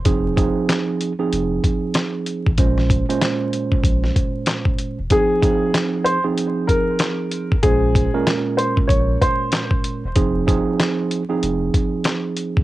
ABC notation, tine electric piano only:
X:1
M:4/4
L:1/16
Q:"Swing 16ths" 1/4=95
K:Fm
V:1 name="Tine electric piano"
[F,CEA]2 [F,CEA]4- [F,CEA] [F,CEA]8 z | [B,,A,Dc]3 [B,,A,Dc]12 z | [F,CEA]2 [F,CEA]4- [F,CEA] [F,CEA]8 z | [B,,A,Dc]3 [B,,A,DB]12 z |
[F,CEA]2 [F,CEA]4- [F,CEA] [F,CEA]8 z |]